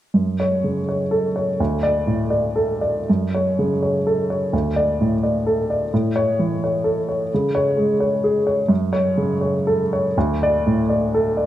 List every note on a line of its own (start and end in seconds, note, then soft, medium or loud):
0.14 1.55 F#2 soft
0.40 0.78 C#5 soft
0.64 1.02 C#3 soft
0.89 1.26 C#5 soft
1.11 1.49 A4 soft
1.36 1.59 C#5 soft
1.60 3.04 D2 soft
1.83 2.20 D5 medium
2.07 2.45 A2 soft
2.30 2.71 D5 soft
2.56 2.98 A4 soft
2.81 3.08 D5 soft
3.09 4.50 F#2 soft
3.35 3.72 C#5 soft
3.59 3.97 C#3 soft
3.83 4.21 C#5 soft
4.07 4.44 A4 soft
4.30 4.53 C#5 soft
4.53 5.87 D2 soft
4.76 5.13 D5 medium
5.01 5.36 A2 soft
5.23 5.59 D5 soft
5.47 5.83 A4 soft
5.70 5.92 D5 soft
5.94 7.27 A2 soft
6.16 6.51 C#5 medium
6.39 6.75 E3 soft
6.64 6.99 C#5 soft
6.84 7.21 A4 soft
7.09 7.31 C#5 soft
7.34 8.68 C#3 soft
7.55 7.91 C#5 medium
7.77 8.14 G#3 soft
8.00 8.37 C#5 soft
8.24 8.61 G#4 soft
8.47 8.70 C#5 soft
8.68 10.10 F#2 soft
8.93 9.31 C#5 medium
9.17 9.56 C#3 soft
9.41 9.80 C#5 soft
9.67 10.06 A4 soft
9.93 10.16 C#5 soft
10.17 11.46 D2 soft
10.43 10.81 D5 medium
10.67 11.05 A2 soft
10.89 11.28 D5 soft
11.14 11.46 A4 soft
11.37 11.46 D5 soft